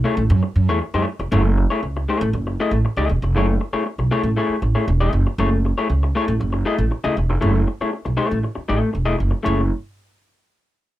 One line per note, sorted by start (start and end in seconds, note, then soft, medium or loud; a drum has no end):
0.04 0.22 A3 medium
0.04 0.17 E4 medium
0.04 0.17 G#4 medium
0.04 0.16 C#5 medium
0.17 0.28 A1 loud
0.17 muted clean electric guitar stroke medium
0.30 0.40 F#2 loud
0.30 muted clean electric guitar stroke soft
0.43 muted clean electric guitar stroke soft
0.56 0.68 F#2 loud
0.68 0.79 E2 medium
0.68 0.80 A3 medium
0.68 0.80 E4 medium
0.68 0.81 G#4 medium
0.68 0.81 C#5 medium
0.81 muted clean electric guitar stroke medium
0.94 1.04 F#2 medium
0.94 1.06 A3 medium
0.94 1.06 E4 medium
0.94 1.07 G#4 medium
0.94 1.07 C#5 medium
1.07 muted clean electric guitar stroke soft
1.19 1.30 F1 medium
1.19 muted clean electric guitar stroke medium
1.32 1.63 F#1 loud
1.32 1.50 A3 medium
1.32 1.44 E4 medium
1.32 1.44 G#4 medium
1.32 1.43 C#5 medium
1.45 muted clean electric guitar stroke soft
1.57 muted clean electric guitar stroke soft
1.70 1.82 A3 soft
1.70 1.82 E4 medium
1.70 1.82 G#4 medium
1.70 1.82 C#5 medium
1.83 2.04 C#2 medium
1.83 muted clean electric guitar stroke soft
1.97 muted clean electric guitar stroke soft
2.09 2.28 A3 medium
2.09 2.22 E4 medium
2.09 2.21 G#4 medium
2.09 2.21 C#5 medium
2.21 2.31 A1 loud
2.21 muted clean electric guitar stroke medium
2.33 2.54 F#1 medium
2.33 muted clean electric guitar stroke soft
2.47 muted clean electric guitar stroke soft
2.60 2.77 A3 medium
2.60 2.73 E4 medium
2.60 2.73 G#4 medium
2.60 2.74 D#5 loud
2.71 2.82 A1 loud
2.71 muted clean electric guitar stroke soft
2.85 muted clean electric guitar stroke medium
2.97 3.07 C#2 medium
2.97 3.09 A3 medium
2.97 3.09 E4 medium
2.97 3.09 G#4 medium
2.97 3.11 D#5 loud
3.09 3.20 E1 medium
3.09 muted clean electric guitar stroke soft
3.22 3.35 F1 medium
3.22 muted clean electric guitar stroke soft
3.35 3.56 F#1 loud
3.35 3.54 A3 medium
3.35 3.49 E4 medium
3.35 3.48 G#4 medium
3.35 3.47 C#5 medium
3.48 muted clean electric guitar stroke medium
3.61 muted clean electric guitar stroke medium
3.73 3.85 A3 medium
3.73 3.85 E4 medium
3.73 3.85 G#4 medium
3.73 3.86 C#5 medium
3.73 muted upright bass stroke soft
3.86 muted clean electric guitar stroke soft
3.98 4.09 B1 medium
3.98 muted clean electric guitar stroke soft
4.11 4.29 A3 loud
4.11 4.24 E4 medium
4.11 4.23 G#4 loud
4.11 4.23 C#5 loud
4.23 4.34 A1 loud
4.23 muted clean electric guitar stroke soft
4.37 4.55 A3 medium
4.37 4.55 E4 medium
4.37 4.55 G#4 loud
4.37 4.55 C#5 medium
4.49 muted upright bass stroke soft
4.62 4.73 A1 medium
4.62 muted clean electric guitar stroke soft
4.75 4.86 A3 medium
4.75 4.87 E4 medium
4.75 4.87 G#4 medium
4.75 4.87 C#5 medium
4.87 5.09 E1 loud
4.87 muted clean electric guitar stroke soft
5.00 5.12 A3 medium
5.00 5.13 E4 medium
5.00 5.13 G#4 medium
5.00 5.14 D#5 medium
5.13 5.23 F#1 loud
5.13 muted clean electric guitar stroke soft
5.27 muted clean electric guitar stroke soft
5.38 5.70 F#1 loud
5.38 5.57 A3 medium
5.38 5.52 E4 medium
5.38 5.52 G#4 medium
5.38 5.51 C#5 medium
5.52 muted clean electric guitar stroke soft
5.65 muted clean electric guitar stroke soft
5.78 5.89 A3 medium
5.78 5.89 E4 medium
5.78 5.89 G#4 medium
5.78 5.89 C#5 medium
5.90 6.11 C#2 medium
5.90 muted clean electric guitar stroke soft
6.03 muted clean electric guitar stroke medium
6.15 6.33 A3 medium
6.15 6.28 E4 medium
6.15 6.27 G#4 medium
6.15 6.26 C#5 medium
6.28 6.38 A1 loud
6.28 muted clean electric guitar stroke medium
6.40 6.62 F#1 medium
6.40 muted clean electric guitar stroke soft
6.53 muted clean electric guitar stroke soft
6.65 6.84 A3 medium
6.65 6.78 E4 loud
6.65 6.77 G#4 medium
6.65 6.78 D#5 medium
6.78 6.89 A1 loud
6.78 muted clean electric guitar stroke soft
6.91 muted clean electric guitar stroke soft
7.04 7.14 C#2 medium
7.04 7.17 A3 medium
7.04 7.17 E4 medium
7.04 7.17 G#4 medium
7.04 7.18 D#5 medium
7.17 7.29 E1 medium
7.17 muted clean electric guitar stroke soft
7.29 7.40 F1 medium
7.29 muted clean electric guitar stroke soft
7.41 7.63 F#1 loud
7.41 7.59 A3 medium
7.41 7.54 E4 medium
7.41 7.54 G#4 medium
7.41 7.53 C#5 medium
7.55 muted clean electric guitar stroke soft
7.67 muted clean electric guitar stroke soft
7.80 7.92 A3 soft
7.80 7.92 E4 medium
7.80 7.92 G#4 medium
7.80 7.92 C#5 medium
7.80 muted upright bass stroke soft
7.93 muted clean electric guitar stroke soft
8.05 8.16 B1 medium
8.05 muted clean electric guitar stroke soft
8.17 8.38 A3 medium
8.17 8.30 E4 medium
8.17 8.30 G#4 medium
8.17 8.29 C#5 loud
8.30 8.42 A1 medium
8.30 muted clean electric guitar stroke soft
8.44 muted clean electric guitar stroke soft
8.55 muted clean electric guitar stroke soft
8.55 muted upright bass stroke soft
8.68 8.80 A1 medium
8.68 8.89 A3 medium
8.68 8.81 E4 medium
8.68 8.80 G#4 medium
8.68 8.81 D#5 medium
8.81 muted clean electric guitar stroke soft
8.93 9.16 E1 medium
8.93 muted clean electric guitar stroke soft
9.05 9.17 A3 medium
9.05 9.17 E4 medium
9.05 9.17 G#4 medium
9.05 9.18 D#5 medium
9.18 9.31 F#1 medium
9.18 muted clean electric guitar stroke soft
9.31 muted clean electric guitar stroke soft
9.43 9.69 F#1 loud
9.43 9.60 A3 medium
9.43 9.60 E4 medium
9.43 9.60 G#4 medium
9.43 9.61 C#5 medium